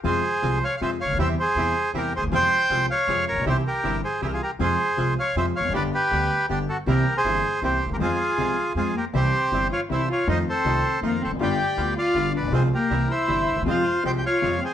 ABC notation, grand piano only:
X:1
M:3/4
L:1/16
Q:1/4=159
K:Fm
V:1 name="Grand piano" clef=bass
[F,,C,F,A,F]2 z2 [C,,C,F,A,F]2 z2 [F,,C,F,A,F]2 z/2 D,,/2 =D,,/2 E,,/2 | [=E,,C,=E,G,=E]2 z2 [E,,C,E,G,E]2 z2 [E,,C,E,G,E]2 z/2 =D,,/2 _E,,/2 =E,,/2 | [F,,C,F,A,F]2 z2 [C,,C,F,A,F]2 z2 [F,,C,F,A,F]2 z/2 =A,,,/2 B,,,/2 =B,,,/2 | [C,,C,=E,G,=E]2 z2 [G,,,G,,C,E,G,E]2 z2 [C,,C,E,G,E]2 z2 |
[F,,C,F,A,F]2 z2 [C,,C,F,A,F]2 z2 [F,,C,F,A,F]2 z/2 =E,,/2 F,,/2 _G,,/2 | [G,,,G,,=D,G,=B,G]2 z2 [=D,,D,G,B,G]2 z2 [G,,,G,,D,G,B,G]2 z2 | [C,,C,=E,B,CG]2 z2 [G,,,G,,E,B,CG]2 z2 [C,,C,E,B,CG]2 z/2 =D,,/2 _E,,/2 =E,,/2 | [F,,F,A,CA]2 z2 [C,,C,F,A,CA]2 z2 [F,,F,A,CA]2 z2 |
[C,,C,=E,G,CG]2 z2 [G,,,G,,E,G,CG]2 z2 [C,,C,E,G,CG]2 z2 | [F,,E,F,=A,CF]2 z2 [C,,C,E,A,CF]2 z2 [F,,E,F,A,CF]2 z/2 =E,,/2 F,,/2 _G,,/2 | [G,,,G,,=D,G,=B,F]2 z2 [=D,,D,G,B,F]2 z2 [G,,,G,,D,G,B,F]2 z/2 =A,,,/2 _B,,,/2 =B,,,/2 | [C,,C,F,A,F]2 z2 [C,,C,=E,G,=E]2 z2 [G,,,G,,C,E,G,E]2 z/2 =D,,/2 _E,,/2 =E,,/2 |
[F,,C,F,A,F]2 z2 [C,,C,F,A,F]2 z2 [F,,C,F,A,F]2 z2 |]